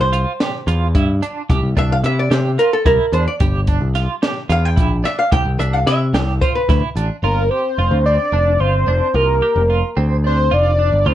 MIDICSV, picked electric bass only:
0, 0, Header, 1, 2, 480
1, 0, Start_track
1, 0, Tempo, 546946
1, 1312, Time_signature, 7, 3, 24, 8
1, 9777, End_track
2, 0, Start_track
2, 0, Title_t, "Picked electric bass"
2, 0, Program_c, 0, 34
2, 0, Note_on_c, 0, 36, 74
2, 213, Note_off_c, 0, 36, 0
2, 588, Note_on_c, 0, 40, 89
2, 814, Note_off_c, 0, 40, 0
2, 832, Note_on_c, 0, 43, 80
2, 1056, Note_off_c, 0, 43, 0
2, 1314, Note_on_c, 0, 36, 108
2, 1420, Note_off_c, 0, 36, 0
2, 1426, Note_on_c, 0, 36, 78
2, 1540, Note_off_c, 0, 36, 0
2, 1552, Note_on_c, 0, 36, 79
2, 1775, Note_off_c, 0, 36, 0
2, 1788, Note_on_c, 0, 48, 86
2, 2013, Note_off_c, 0, 48, 0
2, 2024, Note_on_c, 0, 48, 92
2, 2251, Note_off_c, 0, 48, 0
2, 2507, Note_on_c, 0, 36, 98
2, 2621, Note_off_c, 0, 36, 0
2, 2743, Note_on_c, 0, 40, 78
2, 2859, Note_off_c, 0, 40, 0
2, 2986, Note_on_c, 0, 31, 109
2, 3324, Note_off_c, 0, 31, 0
2, 3341, Note_on_c, 0, 36, 81
2, 3569, Note_off_c, 0, 36, 0
2, 3943, Note_on_c, 0, 40, 92
2, 4170, Note_off_c, 0, 40, 0
2, 4187, Note_on_c, 0, 34, 84
2, 4412, Note_off_c, 0, 34, 0
2, 4669, Note_on_c, 0, 36, 110
2, 4779, Note_off_c, 0, 36, 0
2, 4784, Note_on_c, 0, 36, 82
2, 4899, Note_off_c, 0, 36, 0
2, 4907, Note_on_c, 0, 36, 80
2, 5132, Note_off_c, 0, 36, 0
2, 5146, Note_on_c, 0, 48, 86
2, 5371, Note_off_c, 0, 48, 0
2, 5383, Note_on_c, 0, 36, 98
2, 5610, Note_off_c, 0, 36, 0
2, 5867, Note_on_c, 0, 38, 96
2, 5980, Note_off_c, 0, 38, 0
2, 6103, Note_on_c, 0, 33, 79
2, 6218, Note_off_c, 0, 33, 0
2, 6342, Note_on_c, 0, 31, 99
2, 6569, Note_off_c, 0, 31, 0
2, 6828, Note_on_c, 0, 29, 80
2, 6937, Note_off_c, 0, 29, 0
2, 6942, Note_on_c, 0, 38, 88
2, 7169, Note_off_c, 0, 38, 0
2, 7304, Note_on_c, 0, 29, 82
2, 7530, Note_off_c, 0, 29, 0
2, 7542, Note_on_c, 0, 31, 80
2, 7769, Note_off_c, 0, 31, 0
2, 7781, Note_on_c, 0, 29, 83
2, 7897, Note_off_c, 0, 29, 0
2, 8021, Note_on_c, 0, 36, 101
2, 8248, Note_off_c, 0, 36, 0
2, 8384, Note_on_c, 0, 29, 84
2, 8610, Note_off_c, 0, 29, 0
2, 8748, Note_on_c, 0, 38, 90
2, 9196, Note_off_c, 0, 38, 0
2, 9229, Note_on_c, 0, 29, 78
2, 9565, Note_off_c, 0, 29, 0
2, 9587, Note_on_c, 0, 31, 80
2, 9700, Note_off_c, 0, 31, 0
2, 9706, Note_on_c, 0, 38, 97
2, 9777, Note_off_c, 0, 38, 0
2, 9777, End_track
0, 0, End_of_file